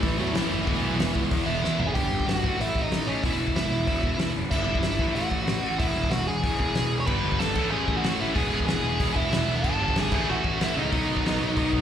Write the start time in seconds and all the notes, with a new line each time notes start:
Already playing: A2 E3 A3 C#4 E4
0.03 A1 E3 E4, kick, open hi-hat
0.18 E2 A2 E3 A3 C#4 E4 F#4
0.22 F#3
0.33 A1 A2 E3 A3 E4, snare, open hi-hat
0.38 C#4 E4
0.49 F#1 E3 E4
0.65 E1 E2 B2 E3 G#3 B3 E4, kick, open hi-hat
0.82 B1
0.99 E1, snare, open hi-hat
1.15 C#2, kick
1.31 E2, kick, open hi-hat
1.46 E1 E3 G#3 B3 E4 E5
1.62 E2 E3 G#3 B3 E4, snare
1.80 G#1, floor tom
1.87 G#4 G#5
1.94 G1 G2 D3 G3 G4 G5, kick, open hi-hat
2.12 G1
2.20 kick
2.27 G1 F#4 F#5, snare, open hi-hat
2.42 A1 A2 E3 A3, kick
2.60 A1 E4 E5, open hi-hat
2.75 A1, kick
2.82 D#4 D#5
2.90 A1, snare, open hi-hat
3.06 A1 A2 E3 A3 C#4 C#5
3.23 E1 E2 B2 E3 E4 E5, kick, open hi-hat
3.39 E1
3.48 kick
3.54 E1 E4 E5, snare, open hi-hat
3.70 E1
3.86 E1 E2 B2 E3, kick, open hi-hat
4.03 E1, kick
4.19 E1, snare, open hi-hat
4.35 F#1
4.51 G1 G2 D3 G3 E4 E5, kick, crash
4.66 G1
4.75 kick
4.82 G1, snare, open hi-hat
4.99 A1 A2 E3 A3, kick
5.14 A1 F#4 F#5, open hi-hat
5.31 A1, kick
5.46 A1, snare, open hi-hat
5.62 A1 E3 A3
5.67 A2
5.78 E1 E2 B2 E3 E4 E5, kick, open hi-hat
5.96 E1
6.04 kick
6.10 E1 F#4 F#5, snare, open hi-hat
6.27 E1 G#4 G#5
6.43 E1 E2 B2 E3, kick, open hi-hat
6.60 E1 G#4 G#5, kick
6.75 E1, snare, open hi-hat
6.92 E1
7.00 C#5 C#6
7.06 G1 G2 D3 G3 B3 D4 B4 B5, kick, crash
7.21 G1 G2 D3 G3 B3 D4
7.32 kick
7.38 G1 G2 D3 G3 B3 D4 A4 A5, snare, open hi-hat
7.54 A1 A2 E3 A3 C#4 E4, kick, crash
7.59 A3
7.70 A1 A2 E3 A3 C#4 E4 G#4 G#5
7.86 A1 A2 E3 A3 C#4 E4, kick
7.97 F#4 F#5
8.02 A1 A2 E3 A3 C#4 E4, snare, open hi-hat
8.19 A1 A2 E3 A3 C#4 E4 E5
8.23 A2
8.34 E1 E2 B2 E3 G#3 B3 E4 G#4 G#5, kick, open hi-hat
8.39 E3
8.50 E1 E3 G#3 B3 E4
8.60 kick
8.66 E1 E3 G#3 B3 E4 G#4 G#5, snare, open hi-hat
8.82 E1 E3 G#3 B3 E4
8.99 E1 E2 B2 E3 G#3 B3 E4, kick, open hi-hat
9.15 E1 E3 G#3 B3 E4 E5, kick
9.30 E1 E3 G#3 B3 E4, snare, open hi-hat
9.47 E1 E3 G#3 B3 E4
9.56 A4 A5
9.63 G1 G2 D3 G3 B3 D4, kick, crash
9.67 D3 G3
9.78 G1 G2 D3 G3 B3 D4
9.88 kick
9.94 G1 G2 D3 G3 B3 D4 G#4, snare, open hi-hat
10.00 G#5
10.10 A1 A2 E3 A3 C#4 E4, kick, crash
10.14 A3
10.25 A2 E3 A3 C#4 E4
10.29 A1 F#4 F#5
10.42 A1 A2 E3 A3 C#4 E4, kick
10.57 A2 E3 A3 C#4 E4, open hi-hat
10.61 A1 E4 E5, snare
10.74 C#2 A2 E3 A3 C#4 E4
10.78 A2 E3 D#4 D#5
10.90 B1 B2 D#3 F#3 B3 D#4, kick, open hi-hat
10.95 B3
11.06 B1 B2 D#3 F#3 B3 D#4
11.17 kick
11.22 B1 B2 D#3 F#3 B3 D#4, open hi-hat
11.27 snare
11.39 B1 B2 D#3 F#3 B3 D#4
11.54 B1 B2 D#3 F#3 B3 D#4, kick, open hi-hat
11.59 B3
11.72 B1 B2 D#3 F#3 B3 D#4, kick